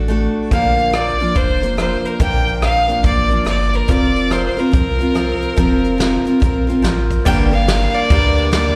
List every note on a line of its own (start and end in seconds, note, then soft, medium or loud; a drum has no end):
0.00 0.28 A1 medium
0.08 0.51 A3 medium
0.08 0.52 D4 medium
0.08 0.52 F#4 medium
0.08 0.52 A4 medium
0.51 1.12 A#1 loud
0.51 0.94 A#2 medium
0.51 0.94 D3 medium
0.51 0.92 F3 medium
0.51 0.94 A#3 medium
0.51 0.94 D4 medium
0.51 0.95 A#4 medium
0.51 0.96 F5 medium
0.51 kick medium
0.51 closed hi-hat medium
0.78 closed hi-hat medium
0.93 1.20 F3 soft
0.93 1.20 A#3 soft
0.93 1.19 D4 medium
0.93 1.18 A#4 medium
0.93 1.38 D5 medium
0.93 cross-stick loud
0.93 closed hi-hat medium
1.19 1.34 F3 soft
1.19 1.34 A#3 soft
1.19 1.36 D4 soft
1.19 1.35 A#4 soft
1.19 closed hi-hat soft
1.35 1.96 F1 medium
1.35 1.62 F3 medium
1.35 1.62 A#3 medium
1.35 1.62 D4 medium
1.35 1.61 A#4 medium
1.35 1.78 C5 medium
1.35 kick loud
1.35 closed hi-hat medium
1.62 1.76 F3 soft
1.62 1.77 A#3 soft
1.62 1.78 D4 soft
1.62 1.78 A#4 soft
1.62 closed hi-hat medium
1.77 2.20 F3 medium
1.77 2.21 A#3 medium
1.77 2.20 D4 medium
1.77 2.21 A#4 medium
1.77 2.08 C5 medium
1.77 cross-stick medium
1.77 closed hi-hat medium
2.05 2.21 A#4 medium
2.05 closed hi-hat medium
2.20 2.50 A#1 loud
2.20 2.62 A#2 medium
2.20 2.62 D3 medium
2.20 2.62 F3 medium
2.20 2.62 A#3 medium
2.20 2.62 D4 medium
2.20 2.64 A#4 medium
2.20 2.60 G5 medium
2.20 kick loud
2.20 closed hi-hat medium
2.47 closed hi-hat medium
2.62 2.98 A#1 medium
2.62 2.89 F3 soft
2.62 2.88 A#3 medium
2.62 2.88 D4 soft
2.62 2.87 A#4 medium
2.62 3.02 F5 medium
2.62 cross-stick loud
2.62 closed hi-hat medium
2.88 3.02 F3 soft
2.88 3.03 A#3 soft
2.88 3.04 D4 medium
2.88 3.04 A#4 medium
2.88 closed hi-hat medium
3.03 3.40 A1 medium
3.03 3.30 F3 medium
3.03 3.30 A#3 medium
3.03 3.29 D4 medium
3.03 3.28 A#4 medium
3.03 3.44 D5 medium
3.03 kick loud
3.03 closed hi-hat medium
3.29 3.43 F3 soft
3.29 3.45 A#3 soft
3.29 3.46 D4 soft
3.29 3.46 A#4 soft
3.29 closed hi-hat medium
3.45 3.82 G1 medium
3.45 3.88 F3 medium
3.45 3.88 A#3 medium
3.45 3.89 D4 medium
3.45 3.90 A#4 medium
3.45 cross-stick medium
3.45 closed hi-hat medium
3.49 3.77 D5 medium
3.73 3.92 A#4 medium
3.73 closed hi-hat medium
3.88 4.49 F1 loud
3.88 4.28 F3 medium
3.88 4.29 C4 medium
3.88 4.30 F4 medium
3.88 4.32 A#4 medium
3.88 4.34 D5 medium
3.88 kick loud
3.88 closed hi-hat medium
4.16 closed hi-hat medium
4.29 4.57 F3 soft
4.29 4.57 C4 medium
4.29 4.57 F4 medium
4.29 4.56 A#4 medium
4.29 4.45 C5 medium
4.29 cross-stick loud
4.29 closed hi-hat medium
4.46 4.60 C5 medium
4.57 4.71 C4 soft
4.57 4.72 F4 medium
4.57 4.73 A#4 medium
4.57 6.85 A#4 medium
4.57 closed hi-hat soft
4.72 5.34 C2 medium
4.72 4.99 F3 medium
4.72 4.99 C4 medium
4.72 4.99 F4 medium
4.72 4.98 A#4 medium
4.72 kick loud
4.72 closed hi-hat medium
4.99 5.14 C4 soft
4.99 5.15 F4 soft
4.99 5.15 A#4 soft
4.99 closed hi-hat medium
5.14 5.55 F3 medium
5.14 5.56 C4 medium
5.14 5.57 F4 medium
5.14 5.58 A#4 medium
5.14 cross-stick medium
5.14 closed hi-hat medium
5.42 closed hi-hat medium
5.56 6.18 F1 loud
5.56 5.97 F3 medium
5.56 5.98 C4 medium
5.56 5.99 F4 medium
5.56 6.00 A#4 medium
5.56 kick loud
5.56 closed hi-hat medium
5.84 closed hi-hat medium
5.98 6.25 F3 medium
5.98 6.26 C4 medium
5.98 6.26 F4 medium
5.98 6.24 A#4 medium
5.98 snare medium
5.98 closed hi-hat medium
6.25 6.40 C4 soft
6.25 6.41 F4 medium
6.25 6.41 A#4 medium
6.25 closed hi-hat medium
6.40 6.78 A#1 medium
6.40 6.67 F3 medium
6.40 6.68 C4 medium
6.40 6.67 F4 medium
6.40 6.66 A#4 medium
6.40 kick loud
6.40 closed hi-hat medium
6.67 6.82 C4 soft
6.67 6.84 F4 soft
6.67 6.83 A#4 soft
6.67 closed hi-hat medium
6.82 7.20 A1 medium
6.82 7.25 F3 medium
6.82 7.26 C4 medium
6.82 7.27 F4 medium
6.82 7.26 A#4 medium
6.82 snare medium
6.82 closed hi-hat medium
7.11 kick medium
7.11 closed hi-hat medium
7.25 7.87 G1 loud
7.25 7.52 G2 medium
7.25 7.53 D3 loud
7.25 7.52 G3 medium
7.25 7.51 A#3 loud
7.25 7.50 D4 loud
7.25 7.50 A#4 medium
7.25 8.76 D5 medium
7.25 7.38 G5 loud
7.25 8.76 G5 medium
7.25 kick loud
7.25 crash loud
7.51 7.66 G3 soft
7.51 7.67 A#3 soft
7.51 7.68 D4 soft
7.51 7.67 A#4 medium
7.51 7.95 F5 medium
7.51 ride medium
7.68 8.10 G3 medium
7.68 8.11 A#3 medium
7.68 8.11 D4 medium
7.68 8.11 A#4 medium
7.68 snare loud
7.68 ride medium
7.94 8.52 D5 loud
7.94 ride medium
8.10 8.71 D2 loud
8.10 8.52 G2 medium
8.10 8.53 D3 medium
8.10 8.50 G3 medium
8.10 8.51 A#3 medium
8.10 8.52 D4 medium
8.10 8.53 A#4 loud
8.10 kick loud
8.10 ride medium
8.37 ride medium
8.52 8.76 G3 medium
8.52 8.76 A#3 medium
8.52 8.76 D4 medium
8.52 8.76 A#4 medium
8.52 8.76 D5 medium
8.52 snare loud
8.52 ride medium